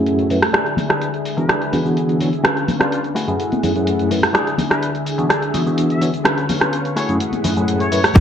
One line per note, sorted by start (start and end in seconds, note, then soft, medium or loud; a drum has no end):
0.00 0.27 F#2 medium
0.00 0.27 A3 medium
0.00 0.53 A3 medium
0.00 0.27 C#4 medium
0.00 0.27 E4 medium
0.00 0.53 F#4 medium
0.00 0.27 G#4 medium
0.00 2.41 E5 medium
0.00 0.53 G#5 medium
0.06 closed hi-hat medium
0.06 shaker soft
0.19 closed hi-hat soft
0.19 shaker soft
0.30 0.37 F#2 medium
0.30 0.37 A3 medium
0.30 0.37 C#4 medium
0.30 0.38 E4 medium
0.30 0.38 B4 medium
0.30 muted clean electric guitar stroke soft
0.30 open hi-hat medium
0.30 shaker medium
0.42 cross-stick medium
0.42 open hi-hat medium
0.42 shaker soft
0.53 3.13 D3 medium
0.53 0.72 D4 loud
0.53 0.72 E4 medium
0.53 2.42 G#4 medium
0.53 0.72 G#4 loud
0.53 cross-stick medium
0.53 closed hi-hat medium
0.53 shaker soft
0.66 closed hi-hat soft
0.66 shaker soft
0.77 open hi-hat medium
0.77 tambourine medium
0.77 high conga medium
0.77 low conga medium
0.77 shaker medium
0.89 1.07 D4 medium
0.89 1.08 E4 medium
0.89 1.08 G#4 medium
0.89 1.05 B4 medium
0.89 cross-stick medium
0.89 closed hi-hat soft
0.89 tambourine soft
0.89 shaker soft
1.02 closed hi-hat medium
1.02 tambourine soft
1.02 shaker soft
1.14 closed hi-hat soft
1.14 shaker soft
1.25 muted clean electric guitar stroke soft
1.25 open hi-hat loud
1.25 shaker medium
1.37 1.44 E3 medium
1.37 1.44 B3 medium
1.37 1.44 D4 medium
1.37 1.44 F#4 medium
1.37 1.45 G#4 medium
1.37 1.85 B4 medium
1.37 muted clean electric guitar stroke medium
1.37 closed hi-hat soft
1.37 shaker soft
1.49 1.61 D4 medium
1.49 1.61 E4 medium
1.49 1.61 G#4 medium
1.49 cross-stick medium
1.49 closed hi-hat medium
1.49 shaker soft
1.62 closed hi-hat soft
1.62 shaker soft
1.73 1.80 E3 medium
1.73 1.80 B3 medium
1.73 1.80 D4 medium
1.73 1.80 F#4 medium
1.73 1.80 G#4 medium
1.73 muted clean electric guitar stroke soft
1.73 open hi-hat loud
1.73 tambourine medium
1.73 low conga medium
1.73 shaker medium
1.85 2.18 E3 medium
1.85 2.18 B3 medium
1.85 2.18 D4 medium
1.85 2.18 F#4 medium
1.85 2.18 G#4 medium
1.85 tambourine soft
1.85 shaker soft
1.97 closed hi-hat medium
1.97 shaker soft
2.09 closed hi-hat soft
2.09 shaker soft
2.20 2.27 E3 medium
2.20 2.28 B3 medium
2.20 2.28 D4 medium
2.20 2.28 F#4 medium
2.20 2.28 C#5 medium
2.20 muted clean electric guitar stroke soft
2.20 open hi-hat loud
2.20 shaker medium
2.33 closed hi-hat soft
2.33 shaker soft
2.44 2.62 C#4 loud
2.44 2.62 D4 medium
2.44 2.62 F4 medium
2.44 3.15 B4 medium
2.44 2.62 B4 loud
2.44 3.15 F5 medium
2.44 3.15 C#6 medium
2.44 cross-stick medium
2.44 closed hi-hat medium
2.44 shaker soft
2.57 closed hi-hat soft
2.57 shaker soft
2.68 open hi-hat medium
2.68 tambourine medium
2.68 high conga medium
2.68 low conga medium
2.68 shaker medium
2.80 2.98 C#4 medium
2.80 2.98 D4 medium
2.80 2.98 F4 medium
2.80 2.88 F4 medium
2.80 2.98 D5 medium
2.80 cross-stick medium
2.80 closed hi-hat soft
2.80 tambourine soft
2.80 shaker soft
2.92 3.00 F4 medium
2.92 closed hi-hat medium
2.92 tambourine soft
2.92 shaker soft
3.04 closed hi-hat soft
3.04 shaker soft
3.15 3.54 A3 medium
3.15 4.34 A3 medium
3.15 4.33 E4 medium
3.15 3.54 E4 medium
3.15 3.54 F#4 medium
3.15 4.33 G#4 medium
3.15 3.54 G#4 medium
3.15 4.33 F#5 medium
3.15 open hi-hat loud
3.15 shaker medium
3.28 3.35 F#2 medium
3.28 3.35 A3 medium
3.28 3.35 C#4 medium
3.28 3.35 E4 medium
3.28 3.35 G#4 medium
3.28 closed hi-hat soft
3.28 shaker soft
3.40 closed hi-hat medium
3.40 shaker soft
3.52 closed hi-hat soft
3.52 high conga medium
3.52 shaker soft
3.63 3.70 F#2 medium
3.63 3.70 A3 medium
3.63 3.71 C#4 medium
3.63 3.71 E4 medium
3.63 3.71 G#4 medium
3.63 muted clean electric guitar stroke soft
3.63 open hi-hat loud
3.63 tambourine medium
3.63 low conga medium
3.63 shaker medium
3.75 4.08 F#2 medium
3.75 4.08 A3 medium
3.75 4.08 C#4 medium
3.75 4.08 E4 medium
3.75 4.08 G#4 medium
3.75 closed hi-hat soft
3.75 tambourine medium
3.75 shaker soft
3.87 closed hi-hat medium
3.87 shaker soft
3.99 closed hi-hat soft
3.99 shaker soft
4.11 4.18 F#2 medium
4.11 4.18 A3 medium
4.11 4.18 C#4 medium
4.11 4.18 E4 medium
4.11 4.18 B4 medium
4.11 muted clean electric guitar stroke soft
4.11 open hi-hat medium
4.11 shaker medium
4.23 cross-stick medium
4.23 open hi-hat medium
4.23 shaker soft
4.34 6.94 D3 medium
4.34 4.53 D4 loud
4.34 4.53 E4 medium
4.34 6.23 G#4 medium
4.34 4.53 G#4 loud
4.34 6.23 E5 medium
4.34 cross-stick medium
4.34 closed hi-hat medium
4.34 shaker soft
4.47 closed hi-hat soft
4.47 shaker soft
4.58 open hi-hat medium
4.58 tambourine medium
4.58 high conga medium
4.58 low conga medium
4.58 shaker medium
4.70 4.88 D4 medium
4.70 4.88 E4 medium
4.70 4.89 G#4 medium
4.70 4.86 B4 medium
4.70 cross-stick medium
4.70 closed hi-hat soft
4.70 tambourine medium
4.70 shaker soft
4.83 closed hi-hat medium
4.83 tambourine soft
4.83 shaker soft
4.95 closed hi-hat soft
4.95 shaker soft
5.06 muted clean electric guitar stroke soft
5.06 open hi-hat medium
5.06 tambourine medium
5.06 shaker medium
5.18 5.25 E3 medium
5.18 5.25 B3 medium
5.18 5.25 D4 medium
5.18 5.25 F#4 medium
5.18 5.25 G#4 medium
5.18 muted clean electric guitar stroke medium
5.18 closed hi-hat soft
5.18 shaker soft
5.29 5.42 D4 medium
5.29 5.42 E4 medium
5.29 5.42 G#4 medium
5.29 cross-stick medium
5.29 closed hi-hat medium
5.29 shaker soft
5.42 closed hi-hat soft
5.42 shaker soft
5.53 5.61 E3 medium
5.53 5.61 B3 medium
5.53 5.61 D4 medium
5.53 5.61 F#4 medium
5.53 5.61 G#4 medium
5.53 muted clean electric guitar stroke soft
5.53 open hi-hat loud
5.53 tambourine medium
5.53 low conga medium
5.53 shaker medium
5.66 5.99 E3 medium
5.66 5.99 B3 medium
5.66 5.99 D4 medium
5.66 5.99 F#4 medium
5.66 5.99 G#4 medium
5.66 tambourine medium
5.66 shaker soft
5.78 closed hi-hat medium
5.78 shaker soft
5.90 6.05 E5 medium
5.90 closed hi-hat soft
5.90 shaker soft
6.01 6.09 E3 medium
6.01 6.09 B3 medium
6.01 6.09 D4 medium
6.01 6.09 F#4 medium
6.01 6.09 C#5 medium
6.01 muted clean electric guitar stroke soft
6.01 open hi-hat medium
6.01 shaker medium
6.14 closed hi-hat soft
6.14 shaker soft
6.25 6.43 C#4 loud
6.25 6.43 D4 medium
6.25 6.43 F4 medium
6.25 6.96 B4 medium
6.25 6.43 B4 loud
6.25 6.96 C#5 medium
6.25 6.96 F5 medium
6.25 cross-stick medium
6.25 closed hi-hat medium
6.25 shaker soft
6.38 closed hi-hat soft
6.38 shaker soft
6.49 open hi-hat medium
6.49 tambourine medium
6.49 high conga medium
6.49 low conga medium
6.49 shaker medium
6.61 6.79 C#4 medium
6.61 6.79 D4 medium
6.61 6.79 F4 medium
6.61 6.79 B4 medium
6.61 cross-stick medium
6.61 closed hi-hat soft
6.61 shaker soft
6.73 closed hi-hat medium
6.73 tambourine soft
6.73 shaker soft
6.85 closed hi-hat soft
6.85 shaker soft
6.96 7.35 A3 medium
6.96 8.15 A3 medium
6.96 8.15 E4 medium
6.96 7.35 E4 medium
6.96 7.35 F#4 medium
6.96 8.15 G#4 medium
6.96 7.35 G#4 medium
6.96 7.12 C#5 medium
6.96 8.15 F#5 medium
6.96 open hi-hat loud
6.96 shaker medium
7.09 7.16 F#2 medium
7.09 7.16 A3 medium
7.09 7.16 C#4 medium
7.09 7.16 E4 medium
7.09 7.16 G#4 medium
7.09 closed hi-hat soft
7.09 shaker soft
7.20 closed hi-hat medium
7.20 shaker soft
7.32 closed hi-hat soft
7.32 high conga medium
7.32 shaker soft
7.44 7.51 F#2 medium
7.44 7.51 A3 medium
7.44 7.51 C#4 medium
7.44 7.52 E4 medium
7.44 7.52 G#4 medium
7.44 muted clean electric guitar stroke soft
7.44 open hi-hat loud
7.44 tambourine loud
7.44 low conga medium
7.44 shaker medium
7.56 7.89 F#2 medium
7.56 7.89 A3 medium
7.56 7.89 C#4 medium
7.56 7.89 E4 medium
7.56 7.89 G#4 medium
7.56 closed hi-hat soft
7.56 tambourine soft
7.56 shaker soft
7.68 closed hi-hat medium
7.68 shaker soft
7.80 8.16 C#5 medium
7.80 closed hi-hat soft
7.80 shaker soft
7.91 7.99 F#2 medium
7.91 7.99 A3 medium
7.91 7.99 C#4 medium
7.91 7.99 E4 medium
7.91 7.99 B4 medium
7.91 muted clean electric guitar stroke soft
7.91 open hi-hat medium
7.91 shaker medium
8.04 cross-stick medium
8.04 open hi-hat medium
8.04 shaker soft
8.15 8.20 E2 medium
8.15 8.20 B3 loud
8.15 8.20 D4 loud
8.15 8.20 D4 medium
8.15 8.20 E4 medium
8.15 8.20 F#4 medium
8.15 8.20 G#4 medium
8.15 8.20 G#4 loud
8.15 8.20 B4 loud
8.15 kick loud
8.15 cross-stick medium
8.15 closed hi-hat medium
8.15 shaker soft